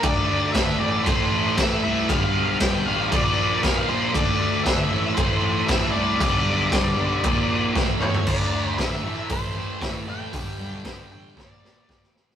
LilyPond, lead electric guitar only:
\new Staff \with { instrumentName = "Lead electric guitar" } { \time 4/4 \key d \minor \tempo 4 = 117 d''8 d''8 e''8 d''8 c''4 e''8 e''8 | f''4 g''8 f''8 d''4 f''8 c''8 | d''4 e''4 c''4 e''8 d''8~ | d''2. r8 cis''8 |
d''4 e''4 c''4 e''8 g''8~ | g''4. g''8 d''4. r8 | }